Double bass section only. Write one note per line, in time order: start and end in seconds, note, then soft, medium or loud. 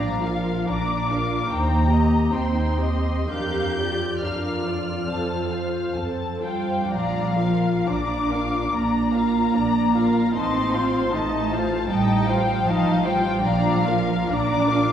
0.00 0.59 A#1 medium
0.69 1.41 A#1 soft
1.50 2.23 D#2 medium
2.34 3.20 D#2 soft
3.31 4.13 F2 soft
4.24 5.00 F2 soft
5.10 5.85 F2 soft
5.96 6.79 F2 soft
6.90 7.76 A#1 medium
7.88 8.63 A#1 medium
8.73 9.45 A#1 soft
9.55 10.26 A#1 soft
10.35 11.05 A1 medium
11.14 11.81 A1 medium
11.90 12.58 A1 medium
12.66 13.34 A1 medium
13.43 14.20 A#1 medium
14.30 14.92 A#1 medium